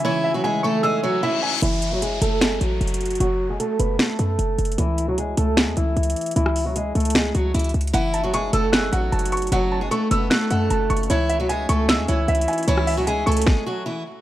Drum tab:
HH |------------------------------------------------------------------------------------------------|x-----------x-----------x-----------x-----------x-----------x-----------x---x---x---x--x--x--x--|x-----------------------x-----------x-----------x-----------x-----------x-----------x---x---x---|x-----------x-----------x-----------x-----------x-----------x-----------x---x---x---x--x--x--x--|
SD |------------------------------------------------------------------------------------------------|------------------------------------------------o-----------------------------------------------|------------------------------------------------o-----------------------------------------------|------------------------------------------------o-----------------------------------------------|
BD |------------------------------------------------------------------------------------------------|------------------------------------------------------------------------------------------------|------------------------------------------------------------------------------------------------|------------------------------------------------------------------------------------------------|

HH |x-----------o-----------x-----------x--x--x--x--x-----------x-----------x--x--x--x--x---x---x---|x-----------x-----------x-----------x-----------x-----------x-----------x---x---x---x--x--x--x--|x-----------------------x-----------x-----------x-----------x-----------x-----------x---x---x---|x-----------x-----------x-----------x-----------x-----------x-----------x---x---x---x--x--x--x--|
SD |------r-----------------------------------------o-----------------------------------------------|------------------------------------------------o-----------------------------------------------|------------------------------------------------o-----------------------------------------------|------------------------------------------------o-----------------------------------------------|
BD |------------------------------------------------------------------------------------------------|------------------------------------------------------------------------------------------------|------------------------------------------------------------------------------------------------|------------------------------------------------------------------------------------------------|

HH |x-----------o-----------x-----------x--x--x--x--------------------------------------------------|
SD |------r-----------------------------------------o-----------------------------------------------|
BD |------------------------------------------------o-----------------------------------------------|